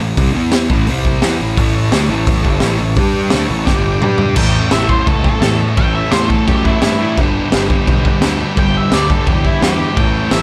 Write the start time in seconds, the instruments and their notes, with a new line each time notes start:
0.00 picked electric bass A1, distorted electric guitar A2 E3
0.17 picked electric bass C2, distorted electric guitar C3 G3 C4, kick, open hi-hat
0.35 picked electric bass E2, distorted electric guitar E3 B3 E4
0.52 snare, open hi-hat
0.70 picked electric bass A1, distorted electric guitar A2 E3 A3, kick
0.87 picked electric bass C2, distorted electric guitar C3 G3 C4, open hi-hat
1.05 kick
1.22 picked electric bass E2, distorted electric guitar E3 B3 E4, snare, open hi-hat
1.40 picked electric bass A1, distorted electric guitar A2 E3 A3
1.56 picked electric bass A1, distorted electric guitar A2 E3 A3, transistor combo organ E4 A4 C#5, kick, open hi-hat
1.92 picked electric bass D2, distorted electric guitar D3 A3 D4, snare, open hi-hat
2.09 picked electric bass A1, distorted electric guitar A2 E3 A3
2.26 kick, open hi-hat
2.44 picked electric bass G1, distorted electric guitar G2 D3 G3, kick
2.60 picked electric bass A1, distorted electric guitar A2 E3 A3, snare, open hi-hat
2.79 picked electric bass A1, distorted electric guitar A2 E3
2.95 picked electric bass G2, distorted electric guitar G3 D4, transistor combo organ D4 G4 D5, kick, open hi-hat
3.00 distorted electric guitar G4
3.29 picked electric bass D2, distorted electric guitar D3, transistor combo organ E4 A4 C#5, snare, open hi-hat
3.34 distorted electric guitar A3 D4
3.49 picked electric bass A1, distorted electric guitar A2 E3 A3
3.64 picked electric bass G1, distorted electric guitar G2, transistor combo organ D4 G4 D5, kick, snare
3.68 distorted electric guitar D3 G3
4.01 picked electric bass G2, distorted electric guitar G3 D4 G4, mid tom
4.18 floor tom
4.34 picked electric bass A1, distorted electric guitar A2, transistor combo organ E4 A4 C#5, lead electric guitar G5, kick, crash
4.38 distorted electric guitar E3 A3
4.71 picked electric bass A1, distorted electric guitar A2 E3, lead electric guitar E5, snare, crash
4.75 distorted electric guitar A3
4.89 distorted electric guitar E3 A3, lead electric guitar C5, kick
5.07 picked electric bass C#2, lead electric guitar A4, kick, crash
5.24 lead electric guitar A4, kick
5.40 picked electric bass E2, distorted electric guitar A2 E3, snare, crash
5.44 distorted electric guitar A3
5.59 distorted electric guitar A3
5.63 distorted electric guitar E3
5.76 picked electric bass A1, distorted electric guitar A2 E3 A3, lead electric guitar G5, kick, crash
5.95 lead electric guitar E5
6.11 picked electric bass E2, distorted electric guitar A2 E3 A3, lead electric guitar C5, snare, crash
6.28 distorted electric guitar E3 A3, lead electric guitar A4, kick
6.47 picked electric bass F#2, lead electric guitar G4, kick, crash
6.65 lead electric guitar E4, kick
6.80 picked electric bass G2, distorted electric guitar A2 E3, lead electric guitar E4, snare, crash
6.85 distorted electric guitar A3
6.99 distorted electric guitar E3 A3
7.16 picked electric bass G1, distorted electric guitar G2 D3, transistor combo organ D4 G4 B4, kick, crash
7.20 distorted electric guitar G3
7.50 picked electric bass G1, distorted electric guitar G2 D3, snare, crash
7.54 distorted electric guitar G3
7.68 distorted electric guitar G3, kick
7.72 distorted electric guitar D3
7.87 picked electric bass B1, kick, crash
8.05 kick
8.20 picked electric bass D2, distorted electric guitar G2 D3, snare, crash
8.25 distorted electric guitar G3
8.39 distorted electric guitar G3
8.43 distorted electric guitar D3
8.56 picked electric bass G1, distorted electric guitar G2 D3 G3, lead electric guitar G5, kick, crash
8.77 lead electric guitar E5
8.91 picked electric bass D2, distorted electric guitar G2 D3, lead electric guitar D5, snare, crash
8.95 distorted electric guitar G3
9.07 distorted electric guitar D3 G3, lead electric guitar A4, kick
9.27 picked electric bass E2, lead electric guitar G4, kick, crash
9.45 lead electric guitar E4, kick
9.59 picked electric bass E2, distorted electric guitar G2 D3, lead electric guitar G4, snare, crash
9.63 distorted electric guitar G3
9.77 distorted electric guitar G3
9.82 distorted electric guitar D3
9.93 picked electric bass A1, distorted electric guitar A2 E3 A3, lead electric guitar G5, kick, crash
9.98 transistor combo organ E4 A4 C#5
10.31 picked electric bass A1, distorted electric guitar A2 E3, lead electric guitar E5, snare, crash
10.35 distorted electric guitar A3